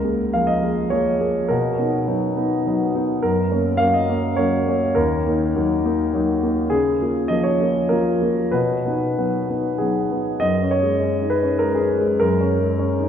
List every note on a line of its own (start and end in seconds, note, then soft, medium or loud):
0.00 1.53 C#2 soft
0.00 0.33 A#4 medium
0.04 0.31 A#3 soft
0.04 0.31 G#4 soft
0.33 0.61 F3 soft
0.33 0.61 A#3 soft
0.33 0.61 G#4 soft
0.33 0.48 F5 medium
0.47 0.91 D#5 medium
0.63 0.89 A#3 soft
0.63 0.89 G#4 soft
0.90 1.18 F3 soft
0.90 1.18 A#3 soft
0.90 1.18 G#4 soft
0.90 1.49 C#5 medium
1.20 1.47 A#3 soft
1.20 1.47 G#4 soft
1.48 1.79 B2 medium
1.48 2.94 A#4 medium
1.78 2.05 B3 soft
1.78 2.05 D#4 soft
2.07 2.34 F#3 soft
2.07 2.34 B3 soft
2.07 2.34 D#4 soft
2.37 2.63 B3 soft
2.37 2.63 D#4 soft
2.67 2.92 F#3 soft
2.67 2.93 B3 soft
2.67 2.93 D#4 soft
2.95 3.21 B3 soft
2.95 3.21 D#4 soft
3.23 3.52 F#2 medium
3.23 3.81 A#4 medium
3.51 3.78 A#3 soft
3.51 3.78 C#4 soft
3.77 4.07 F#3 soft
3.77 4.06 A#3 soft
3.77 4.07 C#4 soft
3.77 3.94 F5 medium
3.94 4.38 D#5 medium
4.09 4.36 A#3 soft
4.09 4.36 C#4 soft
4.36 4.65 F#3 soft
4.36 4.65 A#3 soft
4.36 4.65 C#4 soft
4.36 4.95 C#5 medium
4.68 4.94 A#3 soft
4.68 4.94 C#4 soft
4.95 5.25 D#2 medium
4.95 6.41 A#4 medium
5.27 5.52 A#3 soft
5.27 5.53 D#4 soft
5.55 5.82 F#3 soft
5.55 5.81 A#3 soft
5.55 5.82 D#4 soft
5.85 6.11 A#3 soft
5.85 6.11 D#4 soft
6.13 6.40 F#3 soft
6.13 6.40 A#3 soft
6.13 6.40 D#4 soft
6.43 6.69 A#3 soft
6.43 6.69 D#4 soft
6.70 7.00 C#3 medium
6.70 7.29 G#4 medium
7.01 7.27 A#3 soft
7.01 7.28 F4 soft
7.28 7.57 F3 soft
7.28 7.57 A#3 soft
7.28 7.58 F4 soft
7.28 7.44 D#5 medium
7.43 7.90 C#5 medium
7.61 7.88 A#3 soft
7.61 7.88 F4 soft
7.89 8.19 F3 soft
7.89 8.19 A#3 soft
7.89 8.19 F4 soft
7.89 8.52 A#4 medium
8.22 8.50 A#3 soft
8.22 8.50 F4 soft
8.52 8.84 B2 medium
8.52 9.79 B4 medium
8.86 9.14 B3 soft
8.86 9.15 D#4 soft
9.18 9.46 F#3 soft
9.18 9.46 B3 soft
9.18 9.46 D#4 soft
9.50 9.77 B3 soft
9.50 9.77 D#4 soft
9.78 10.08 F#3 soft
9.78 10.08 B3 soft
9.78 10.09 D#4 soft
9.78 10.41 G#4 medium
10.12 10.39 B3 soft
10.12 10.40 D#4 soft
10.40 12.16 F#2 medium
10.40 10.71 D#5 medium
10.62 10.94 C#4 soft
10.71 11.31 C#5 medium
10.83 11.14 G#3 soft
11.02 11.34 C#4 soft
11.22 11.42 D#4 soft
11.30 11.61 B4 medium
11.43 11.74 C#4 soft
11.59 11.93 G#3 soft
11.59 11.75 A#4 medium
11.75 12.20 G#4 medium
11.81 12.12 C#4 soft
12.01 12.32 G#3 soft
12.20 13.09 F#2 medium
12.20 13.08 A#4 medium
12.41 12.72 C#4 soft
12.60 12.91 G#3 soft
12.79 13.09 C#4 soft
12.99 13.09 D#4 soft